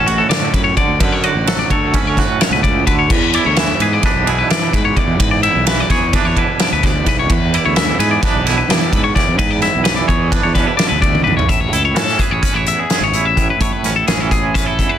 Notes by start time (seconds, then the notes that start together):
Already playing: A1 D3 F#3 C#4 A4
0.06 A2 F#4, ride
0.18 A4
0.29 D3 D5, snare, ride
0.53 F#2 B4, kick, ride
0.64 C#5
0.77 D3 D5, kick, ride
0.88 D2
1.00 F#2 D3 B4, kick, ride
1.12 C#5
1.23 F#4 D5, ride
1.35 A1
1.47 F#3 A4, snare, ride
1.59 D5
1.70 D2 A4 C#5, kick, ride
1.94 C#4 B4, kick, ride
2.03 D2
2.07 C#5
2.17 A2 F#4 B4, kick, snare, ride
2.41 B2 C#5, snare, ride
2.50 C#2 B4
2.63 C#3 D5, kick, ride
2.87 D2 D3 B4, kick, ride
2.99 C#5
3.10 E2 B4, kick, crash
3.33 E4 D5, ride
3.46 D2 C#5
3.56 E3 E5, snare, ride
3.79 G#2 G#4 B4, ride
3.93 D5
4.03 D4 B4, kick, snare, ride
4.15 B1
4.27 B2 E4 G#4, ride
4.39 B4
4.50 E3 D5, snare, ride
4.73 G#2 B4, kick, ride
4.85 C#5
4.96 E2 D5, kick, ride
5.07 E2
5.19 E2 G#2 B4, kick, ride
5.31 D5
5.43 E4 E5, ride
5.55 B1
5.66 E3 B4, snare, ride
5.80 D5
5.90 E2 G#4 C#5, kick, snare, ride
6.13 D4 B4, kick, snare, ride
6.25 E2 C#5
6.36 B2 E4 B4, kick, ride
6.59 D5, snare, ride
6.72 D2 B4
6.83 D5, kick, snare, ride
7.06 B1 E2 B4, kick, snare, ride
7.19 C#5
7.30 E2 B4, kick, ride
7.54 E4 D5, ride
7.65 D2 C#5
7.76 E3 E5, snare, ride
7.99 G#2 G#4 B4, ride
8.11 D5
8.21 D4 B4, kick, snare, ride
8.35 B1
8.44 B2 E4 G#4, snare, ride
8.58 B4
8.68 E3 D5, snare, ride
8.92 G#2 B4, kick, ride
9.04 C#5
9.15 E2 D5, kick, snare, ride
9.28 E2
9.38 E2 G#2 B4, kick, ride
9.51 D5
9.62 E4 E5, snare, ride
9.75 B1
9.84 E3 B4, snare, ride
9.96 D5
10.08 E2 G#4 C#5, kick, ride
10.31 D4 B4, kick, ride
10.43 E2 C#5
10.55 B2 C#4 B4, kick, snare, ride
10.67 E4
10.77 D5, snare, ride
10.89 D2 B4
11.02 D5, kick, ride
11.15 high tom
11.24 B1 E2 B4, mid tom
11.37 C#5, floor tom
11.49 A1 A2 E5, kick, closed hi-hat
11.61 C#5
11.71 C#2 E4 A4, closed hi-hat
11.85 C#5
11.95 A2 E3 C#4 A4, snare, closed hi-hat
12.19 G#4 B4, kick, closed hi-hat
12.30 A1 C#5
12.42 C#4 B4, kick, closed hi-hat
12.53 A1 E4 C#5
12.66 E2 E5, closed hi-hat
12.79 G#4
12.90 G#4, snare, closed hi-hat
13.01 G#1 C#5
13.12 A1 E4, closed hi-hat
13.25 E5
13.37 A2, kick, closed hi-hat
13.50 B4
13.60 A1 A2 C#5, kick, closed hi-hat
13.73 B4
13.83 A1 C#4, snare, closed hi-hat
13.96 E4 A4
14.07 A1 E3 C#4 G#4, snare, closed hi-hat
14.20 A4
14.31 G#4, kick, closed hi-hat
14.54 C#4 B4, kick, snare, closed hi-hat
14.65 E4 A4
14.78 E2, kick, closed hi-hat
14.89 B4